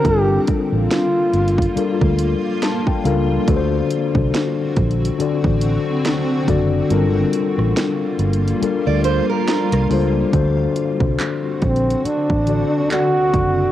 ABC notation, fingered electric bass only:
X:1
M:4/4
L:1/16
Q:"Swing 16ths" 1/4=70
K:Gm
V:1 name="Fingered electric bass" clef=bass
G,,,2 z A,,, z2 G,,,2 z D,,2 z3 ^C,,2 | D,,2 z C,, z2 B,,,2 z A,,,2 z3 ^F,,,2 | G,,,2 z A,,, z2 G,,,2 z D,,2 z2 C,, ^C,,2 | D,,2 z C,, z2 B,,,2 z A,,,2 z3 ^F,,,2 |]